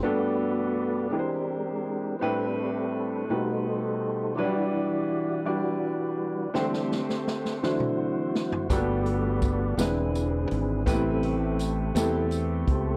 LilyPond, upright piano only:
<<
  \new Staff \with { instrumentName = "Upright piano" } { \time 6/8 \key g \major \tempo 4. = 55 <g b d' fis' a'>4 r8 <gis d' e' g' b' bis'>4 r8 | <a c' d' g' b'>4 r8 <a dis' fis' g' b'>4 r8 | <fis g d' e' fis' b'>4 r8 <g d' e' fis' d''>4 r8 | <a c' d' g' c''>4 r8 <a d' e' fis' c''>4 r8 |
<g bes b d' fis' a'>4 r8 <gis c' d' e' b'>4 r8 | <a b c' e' g' b'>4 r8 <a b c' e' g' a'>4 r8 | }
  \new Staff \with { instrumentName = "Upright piano" } { \clef bass \time 6/8 \key g \major g,4. e4. | a,4. b,4. | e4. r4. | d4. d4. |
g,4. e4. | a,4. r4. | }
>>